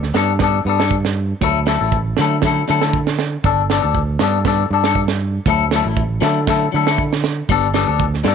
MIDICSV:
0, 0, Header, 1, 5, 480
1, 0, Start_track
1, 0, Key_signature, 2, "major"
1, 0, Tempo, 506757
1, 1345, Time_signature, 4, 2, 24, 8
1, 7908, End_track
2, 0, Start_track
2, 0, Title_t, "Clean electric guitar"
2, 0, Program_c, 0, 27
2, 133, Note_on_c, 0, 59, 66
2, 154, Note_on_c, 0, 62, 68
2, 160, Note_on_c, 0, 69, 72
2, 292, Note_off_c, 0, 59, 0
2, 303, Note_off_c, 0, 62, 0
2, 305, Note_off_c, 0, 69, 0
2, 383, Note_on_c, 0, 59, 60
2, 397, Note_on_c, 0, 62, 68
2, 414, Note_on_c, 0, 69, 67
2, 537, Note_off_c, 0, 59, 0
2, 544, Note_off_c, 0, 62, 0
2, 553, Note_off_c, 0, 69, 0
2, 631, Note_on_c, 0, 59, 60
2, 647, Note_on_c, 0, 62, 64
2, 658, Note_on_c, 0, 69, 67
2, 736, Note_off_c, 0, 69, 0
2, 748, Note_on_c, 0, 69, 49
2, 760, Note_off_c, 0, 59, 0
2, 765, Note_off_c, 0, 62, 0
2, 776, Note_on_c, 0, 62, 53
2, 887, Note_off_c, 0, 69, 0
2, 901, Note_off_c, 0, 62, 0
2, 1345, Note_on_c, 0, 54, 65
2, 1358, Note_on_c, 0, 57, 79
2, 1362, Note_on_c, 0, 64, 71
2, 1368, Note_on_c, 0, 69, 78
2, 1498, Note_off_c, 0, 54, 0
2, 1505, Note_off_c, 0, 57, 0
2, 1507, Note_off_c, 0, 64, 0
2, 1510, Note_off_c, 0, 69, 0
2, 1573, Note_on_c, 0, 54, 66
2, 1588, Note_on_c, 0, 57, 63
2, 1591, Note_on_c, 0, 64, 68
2, 1600, Note_on_c, 0, 69, 74
2, 1702, Note_off_c, 0, 69, 0
2, 1711, Note_off_c, 0, 54, 0
2, 1713, Note_on_c, 0, 69, 50
2, 1718, Note_off_c, 0, 57, 0
2, 1720, Note_off_c, 0, 64, 0
2, 1734, Note_on_c, 0, 64, 50
2, 1741, Note_on_c, 0, 57, 45
2, 1850, Note_off_c, 0, 69, 0
2, 1860, Note_off_c, 0, 64, 0
2, 1864, Note_off_c, 0, 57, 0
2, 2069, Note_on_c, 0, 54, 62
2, 2084, Note_on_c, 0, 57, 68
2, 2092, Note_on_c, 0, 64, 58
2, 2098, Note_on_c, 0, 69, 67
2, 2220, Note_off_c, 0, 54, 0
2, 2228, Note_off_c, 0, 57, 0
2, 2232, Note_off_c, 0, 64, 0
2, 2235, Note_off_c, 0, 69, 0
2, 2300, Note_on_c, 0, 54, 63
2, 2316, Note_on_c, 0, 57, 65
2, 2322, Note_on_c, 0, 64, 69
2, 2337, Note_on_c, 0, 69, 69
2, 2456, Note_off_c, 0, 54, 0
2, 2464, Note_off_c, 0, 57, 0
2, 2467, Note_off_c, 0, 64, 0
2, 2475, Note_off_c, 0, 69, 0
2, 2536, Note_on_c, 0, 54, 61
2, 2543, Note_on_c, 0, 57, 58
2, 2554, Note_on_c, 0, 64, 65
2, 2562, Note_on_c, 0, 69, 74
2, 2658, Note_off_c, 0, 69, 0
2, 2670, Note_on_c, 0, 69, 50
2, 2672, Note_off_c, 0, 54, 0
2, 2676, Note_off_c, 0, 57, 0
2, 2678, Note_off_c, 0, 64, 0
2, 2689, Note_on_c, 0, 64, 46
2, 2699, Note_on_c, 0, 57, 51
2, 2808, Note_off_c, 0, 69, 0
2, 2818, Note_off_c, 0, 64, 0
2, 2823, Note_off_c, 0, 57, 0
2, 3270, Note_on_c, 0, 62, 74
2, 3280, Note_on_c, 0, 69, 83
2, 3421, Note_off_c, 0, 62, 0
2, 3426, Note_off_c, 0, 69, 0
2, 3504, Note_on_c, 0, 59, 65
2, 3515, Note_on_c, 0, 62, 73
2, 3529, Note_on_c, 0, 69, 65
2, 3612, Note_off_c, 0, 69, 0
2, 3623, Note_on_c, 0, 69, 51
2, 3636, Note_off_c, 0, 59, 0
2, 3642, Note_off_c, 0, 62, 0
2, 3656, Note_on_c, 0, 62, 46
2, 3765, Note_off_c, 0, 69, 0
2, 3781, Note_off_c, 0, 62, 0
2, 3980, Note_on_c, 0, 59, 64
2, 3995, Note_on_c, 0, 62, 65
2, 4013, Note_on_c, 0, 69, 69
2, 4136, Note_off_c, 0, 59, 0
2, 4144, Note_off_c, 0, 62, 0
2, 4152, Note_off_c, 0, 69, 0
2, 4214, Note_on_c, 0, 59, 62
2, 4232, Note_on_c, 0, 62, 66
2, 4240, Note_on_c, 0, 69, 76
2, 4373, Note_off_c, 0, 59, 0
2, 4382, Note_off_c, 0, 62, 0
2, 4386, Note_off_c, 0, 69, 0
2, 4480, Note_on_c, 0, 62, 62
2, 4490, Note_on_c, 0, 69, 66
2, 4592, Note_off_c, 0, 69, 0
2, 4603, Note_on_c, 0, 69, 63
2, 4604, Note_off_c, 0, 62, 0
2, 4635, Note_on_c, 0, 62, 51
2, 4735, Note_off_c, 0, 69, 0
2, 4751, Note_off_c, 0, 62, 0
2, 5182, Note_on_c, 0, 54, 75
2, 5190, Note_on_c, 0, 57, 78
2, 5200, Note_on_c, 0, 64, 83
2, 5208, Note_on_c, 0, 69, 88
2, 5337, Note_off_c, 0, 54, 0
2, 5341, Note_off_c, 0, 57, 0
2, 5346, Note_off_c, 0, 64, 0
2, 5350, Note_off_c, 0, 69, 0
2, 5421, Note_on_c, 0, 54, 64
2, 5435, Note_on_c, 0, 57, 62
2, 5438, Note_on_c, 0, 64, 76
2, 5455, Note_on_c, 0, 69, 76
2, 5525, Note_off_c, 0, 69, 0
2, 5545, Note_off_c, 0, 64, 0
2, 5555, Note_off_c, 0, 54, 0
2, 5556, Note_on_c, 0, 64, 49
2, 5562, Note_off_c, 0, 57, 0
2, 5573, Note_on_c, 0, 57, 46
2, 5691, Note_off_c, 0, 64, 0
2, 5700, Note_off_c, 0, 57, 0
2, 5880, Note_on_c, 0, 54, 65
2, 5894, Note_on_c, 0, 57, 63
2, 5902, Note_on_c, 0, 64, 74
2, 5914, Note_on_c, 0, 69, 71
2, 6046, Note_off_c, 0, 54, 0
2, 6053, Note_off_c, 0, 57, 0
2, 6057, Note_off_c, 0, 64, 0
2, 6063, Note_off_c, 0, 69, 0
2, 6131, Note_on_c, 0, 54, 64
2, 6140, Note_on_c, 0, 57, 75
2, 6152, Note_on_c, 0, 64, 76
2, 6158, Note_on_c, 0, 69, 78
2, 6292, Note_off_c, 0, 54, 0
2, 6296, Note_off_c, 0, 57, 0
2, 6302, Note_off_c, 0, 64, 0
2, 6305, Note_off_c, 0, 69, 0
2, 6366, Note_on_c, 0, 54, 57
2, 6387, Note_on_c, 0, 57, 62
2, 6395, Note_on_c, 0, 64, 66
2, 6404, Note_on_c, 0, 69, 73
2, 6496, Note_off_c, 0, 69, 0
2, 6507, Note_off_c, 0, 54, 0
2, 6507, Note_on_c, 0, 69, 59
2, 6518, Note_off_c, 0, 57, 0
2, 6522, Note_off_c, 0, 64, 0
2, 6535, Note_on_c, 0, 64, 57
2, 6544, Note_on_c, 0, 57, 45
2, 6647, Note_off_c, 0, 69, 0
2, 6661, Note_off_c, 0, 64, 0
2, 6665, Note_off_c, 0, 57, 0
2, 7101, Note_on_c, 0, 55, 80
2, 7116, Note_on_c, 0, 59, 79
2, 7117, Note_on_c, 0, 62, 93
2, 7122, Note_on_c, 0, 69, 87
2, 7257, Note_off_c, 0, 55, 0
2, 7264, Note_off_c, 0, 59, 0
2, 7265, Note_off_c, 0, 62, 0
2, 7267, Note_off_c, 0, 69, 0
2, 7330, Note_on_c, 0, 55, 71
2, 7332, Note_on_c, 0, 59, 72
2, 7344, Note_on_c, 0, 62, 76
2, 7353, Note_on_c, 0, 69, 78
2, 7446, Note_off_c, 0, 69, 0
2, 7458, Note_on_c, 0, 69, 55
2, 7466, Note_off_c, 0, 62, 0
2, 7470, Note_off_c, 0, 55, 0
2, 7471, Note_off_c, 0, 59, 0
2, 7477, Note_on_c, 0, 62, 48
2, 7495, Note_on_c, 0, 59, 46
2, 7603, Note_off_c, 0, 69, 0
2, 7612, Note_off_c, 0, 62, 0
2, 7621, Note_off_c, 0, 59, 0
2, 7803, Note_on_c, 0, 55, 72
2, 7817, Note_on_c, 0, 59, 68
2, 7835, Note_on_c, 0, 62, 66
2, 7841, Note_on_c, 0, 69, 72
2, 7908, Note_off_c, 0, 55, 0
2, 7908, Note_off_c, 0, 59, 0
2, 7908, Note_off_c, 0, 62, 0
2, 7908, Note_off_c, 0, 69, 0
2, 7908, End_track
3, 0, Start_track
3, 0, Title_t, "Fingered electric bass"
3, 0, Program_c, 1, 33
3, 0, Note_on_c, 1, 38, 81
3, 102, Note_off_c, 1, 38, 0
3, 136, Note_on_c, 1, 43, 88
3, 563, Note_off_c, 1, 43, 0
3, 616, Note_on_c, 1, 43, 88
3, 1255, Note_off_c, 1, 43, 0
3, 1335, Note_on_c, 1, 38, 93
3, 1667, Note_off_c, 1, 38, 0
3, 1714, Note_on_c, 1, 33, 81
3, 2022, Note_off_c, 1, 33, 0
3, 2071, Note_on_c, 1, 50, 93
3, 2492, Note_off_c, 1, 50, 0
3, 2554, Note_on_c, 1, 50, 78
3, 3185, Note_off_c, 1, 50, 0
3, 3258, Note_on_c, 1, 31, 99
3, 3589, Note_off_c, 1, 31, 0
3, 3636, Note_on_c, 1, 38, 90
3, 3944, Note_off_c, 1, 38, 0
3, 3978, Note_on_c, 1, 43, 94
3, 4405, Note_off_c, 1, 43, 0
3, 4455, Note_on_c, 1, 43, 80
3, 5095, Note_off_c, 1, 43, 0
3, 5169, Note_on_c, 1, 38, 99
3, 5504, Note_off_c, 1, 38, 0
3, 5544, Note_on_c, 1, 33, 86
3, 5857, Note_off_c, 1, 33, 0
3, 5890, Note_on_c, 1, 50, 104
3, 6320, Note_off_c, 1, 50, 0
3, 6384, Note_on_c, 1, 50, 84
3, 7020, Note_off_c, 1, 50, 0
3, 7090, Note_on_c, 1, 31, 97
3, 7425, Note_off_c, 1, 31, 0
3, 7463, Note_on_c, 1, 38, 83
3, 7777, Note_off_c, 1, 38, 0
3, 7813, Note_on_c, 1, 43, 98
3, 7908, Note_off_c, 1, 43, 0
3, 7908, End_track
4, 0, Start_track
4, 0, Title_t, "Muted clean electric guitar strokes"
4, 3259, Note_on_c, 9, 29, 68
4, 3354, Note_off_c, 9, 29, 0
4, 4461, Note_on_c, 9, 29, 54
4, 4556, Note_off_c, 9, 29, 0
4, 5536, Note_on_c, 9, 29, 58
4, 5631, Note_off_c, 9, 29, 0
4, 7908, End_track
5, 0, Start_track
5, 0, Title_t, "Drums"
5, 29, Note_on_c, 9, 38, 25
5, 124, Note_off_c, 9, 38, 0
5, 138, Note_on_c, 9, 38, 66
5, 233, Note_off_c, 9, 38, 0
5, 371, Note_on_c, 9, 38, 65
5, 377, Note_on_c, 9, 36, 95
5, 465, Note_off_c, 9, 38, 0
5, 472, Note_off_c, 9, 36, 0
5, 755, Note_on_c, 9, 38, 71
5, 850, Note_off_c, 9, 38, 0
5, 860, Note_on_c, 9, 36, 88
5, 955, Note_off_c, 9, 36, 0
5, 992, Note_on_c, 9, 38, 59
5, 1087, Note_off_c, 9, 38, 0
5, 1340, Note_on_c, 9, 36, 84
5, 1435, Note_off_c, 9, 36, 0
5, 1579, Note_on_c, 9, 38, 62
5, 1674, Note_off_c, 9, 38, 0
5, 1819, Note_on_c, 9, 36, 90
5, 1914, Note_off_c, 9, 36, 0
5, 2052, Note_on_c, 9, 38, 64
5, 2147, Note_off_c, 9, 38, 0
5, 2291, Note_on_c, 9, 38, 74
5, 2298, Note_on_c, 9, 36, 81
5, 2385, Note_off_c, 9, 38, 0
5, 2393, Note_off_c, 9, 36, 0
5, 2536, Note_on_c, 9, 38, 25
5, 2630, Note_off_c, 9, 38, 0
5, 2667, Note_on_c, 9, 38, 66
5, 2762, Note_off_c, 9, 38, 0
5, 2780, Note_on_c, 9, 36, 87
5, 2875, Note_off_c, 9, 36, 0
5, 2907, Note_on_c, 9, 38, 58
5, 3002, Note_off_c, 9, 38, 0
5, 3018, Note_on_c, 9, 38, 69
5, 3113, Note_off_c, 9, 38, 0
5, 3260, Note_on_c, 9, 36, 83
5, 3354, Note_off_c, 9, 36, 0
5, 3502, Note_on_c, 9, 38, 65
5, 3597, Note_off_c, 9, 38, 0
5, 3737, Note_on_c, 9, 36, 80
5, 3832, Note_off_c, 9, 36, 0
5, 3971, Note_on_c, 9, 38, 66
5, 4066, Note_off_c, 9, 38, 0
5, 4214, Note_on_c, 9, 36, 94
5, 4217, Note_on_c, 9, 38, 72
5, 4308, Note_off_c, 9, 36, 0
5, 4312, Note_off_c, 9, 38, 0
5, 4582, Note_on_c, 9, 38, 70
5, 4677, Note_off_c, 9, 38, 0
5, 4690, Note_on_c, 9, 36, 81
5, 4785, Note_off_c, 9, 36, 0
5, 4813, Note_on_c, 9, 38, 68
5, 4908, Note_off_c, 9, 38, 0
5, 5170, Note_on_c, 9, 36, 91
5, 5265, Note_off_c, 9, 36, 0
5, 5411, Note_on_c, 9, 38, 65
5, 5505, Note_off_c, 9, 38, 0
5, 5651, Note_on_c, 9, 36, 90
5, 5746, Note_off_c, 9, 36, 0
5, 5891, Note_on_c, 9, 38, 63
5, 5985, Note_off_c, 9, 38, 0
5, 6132, Note_on_c, 9, 36, 88
5, 6132, Note_on_c, 9, 38, 66
5, 6226, Note_off_c, 9, 38, 0
5, 6227, Note_off_c, 9, 36, 0
5, 6506, Note_on_c, 9, 38, 73
5, 6601, Note_off_c, 9, 38, 0
5, 6614, Note_on_c, 9, 36, 96
5, 6709, Note_off_c, 9, 36, 0
5, 6750, Note_on_c, 9, 38, 58
5, 6845, Note_off_c, 9, 38, 0
5, 6856, Note_on_c, 9, 38, 72
5, 6950, Note_off_c, 9, 38, 0
5, 7095, Note_on_c, 9, 36, 89
5, 7189, Note_off_c, 9, 36, 0
5, 7334, Note_on_c, 9, 38, 68
5, 7429, Note_off_c, 9, 38, 0
5, 7574, Note_on_c, 9, 36, 87
5, 7669, Note_off_c, 9, 36, 0
5, 7711, Note_on_c, 9, 38, 25
5, 7805, Note_off_c, 9, 38, 0
5, 7810, Note_on_c, 9, 38, 67
5, 7905, Note_off_c, 9, 38, 0
5, 7908, End_track
0, 0, End_of_file